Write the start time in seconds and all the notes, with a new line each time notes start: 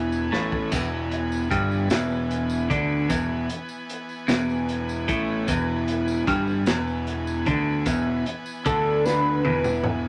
Already playing: E1 E2 E3 B3 B4 G#5
0.12 tambourine
0.32 A1 A2, snare
0.52 kick
0.72 E1 E2, kick, closed hi-hat, tambourine, splash
1.11 closed hi-hat
1.32 tambourine
1.51 G1 G2, kick, closed hi-hat
1.71 tambourine
1.90 E1 E2, snare, closed hi-hat, tambourine
2.10 tambourine
2.31 closed hi-hat
2.50 tambourine
2.70 D2 D3, kick, closed hi-hat
3.09 E1 E2, kick, closed hi-hat, tambourine
3.49 closed hi-hat
3.69 tambourine
3.90 closed hi-hat
4.09 tambourine
4.28 E1 E2, snare, closed hi-hat, tambourine
4.49 tambourine
4.69 closed hi-hat
4.89 tambourine
5.08 A1 A2, kick, closed hi-hat
5.48 E1 E2, kick, closed hi-hat, tambourine
5.88 closed hi-hat
6.08 tambourine
6.27 G1 G2, kick, closed hi-hat
6.47 tambourine
6.66 E1 E2, snare, closed hi-hat, tambourine
6.87 tambourine
7.07 closed hi-hat
7.27 tambourine
7.46 D2 D3, kick, closed hi-hat
7.86 E1 E2, kick, closed hi-hat, tambourine
8.26 closed hi-hat
8.46 tambourine
8.66 D2 D3 A4, kick, closed hi-hat, tambourine
9.05 B4, snare, tambourine
9.45 E1 E2, high tom
9.64 mid tom, tambourine
9.84 mid tom